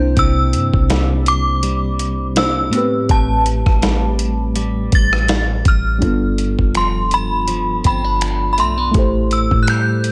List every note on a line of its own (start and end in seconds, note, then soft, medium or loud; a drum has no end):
0.00 0.15 C2 loud
0.00 0.15 C3 medium
0.00 2.31 C3 medium
0.00 2.31 A#3 medium
0.00 2.32 D4 medium
0.00 2.33 E4 medium
0.00 2.34 C5 medium
0.00 0.20 G6 loud
0.17 0.55 C2 loud
0.17 2.81 C3 medium
0.17 1.24 E6 loud
0.17 kick loud
0.17 closed hi-hat medium
0.53 0.72 G2 medium
0.53 closed hi-hat medium
0.74 2.69 C2 loud
0.74 kick medium
0.90 1.63 G3 medium
0.90 snare loud
0.90 closed hi-hat medium
1.26 2.40 D6 loud
1.26 closed hi-hat medium
1.63 3.13 G3 medium
1.63 closed hi-hat medium
1.99 closed hi-hat medium
2.35 2.72 C3 soft
2.35 2.72 A#3 soft
2.35 2.73 D4 soft
2.35 2.73 E4 soft
2.35 2.74 C5 medium
2.35 3.12 E6 loud
2.35 snare loud
2.35 closed hi-hat medium
2.69 5.60 A2 medium
2.69 3.08 A2 medium
2.69 5.61 A3 medium
2.69 2.80 B3 soft
2.69 closed hi-hat medium
2.75 5.63 G4 medium
2.75 5.64 B4 medium
2.80 5.65 C4 medium
3.09 3.64 A1 loud
3.09 6.01 A2 medium
3.09 4.52 A5 medium
3.09 kick loud
3.09 closed hi-hat medium
3.46 closed hi-hat medium
3.66 4.89 A1 loud
3.66 kick medium
3.66 cross-stick medium
3.82 4.56 G3 medium
3.82 snare loud
3.82 closed hi-hat medium
4.19 closed hi-hat medium
4.56 6.75 G3 medium
4.56 closed hi-hat medium
4.92 5.63 A1 loud
4.92 5.69 A6 loud
4.92 kick medium
4.92 closed hi-hat medium
5.13 cross-stick medium
5.28 snare loud
5.28 closed hi-hat medium
5.65 6.01 A1 loud
5.65 6.72 F6 medium
5.65 kick loud
5.65 closed hi-hat medium
5.98 6.56 G1 loud
5.98 8.94 G2 medium
5.98 8.89 G3 medium
5.98 8.90 D4 medium
5.98 8.91 F4 medium
5.98 kick loud
5.98 closed hi-hat medium
6.04 8.93 B3 medium
6.04 8.92 A4 medium
6.38 closed hi-hat medium
6.59 7.81 F1 medium
6.59 kick medium
6.75 7.47 F3 medium
6.75 7.14 C6 medium
6.75 finger snap loud
6.75 closed hi-hat medium
7.11 7.85 B5 medium
7.11 closed hi-hat medium
7.48 9.02 F3 medium
7.48 closed hi-hat medium
7.84 8.60 G1 loud
7.84 8.04 C4 medium
7.84 8.52 B5 medium
7.84 kick medium
7.84 closed hi-hat medium
8.04 9.02 D4 medium
8.21 finger snap loud
8.21 closed hi-hat medium
8.53 8.59 B5 medium
8.58 8.93 B1 loud
8.58 8.78 A3 medium
8.58 9.34 C6 medium
8.58 closed hi-hat medium
8.78 9.02 B3 soft
8.91 9.49 A1 loud
8.91 10.12 A2 medium
8.91 10.12 A3 medium
8.91 10.12 E4 medium
8.91 10.12 G4 medium
8.91 kick loud
8.91 closed hi-hat medium
8.96 10.12 A4 medium
8.96 10.12 C5 medium
9.31 9.63 E6 medium
9.31 closed hi-hat medium
9.51 10.12 A2 medium
9.51 kick medium
9.63 9.68 F#6 medium
9.67 10.12 G3 medium
9.67 10.12 G6 medium
9.67 finger snap loud
9.67 closed hi-hat medium
10.04 closed hi-hat medium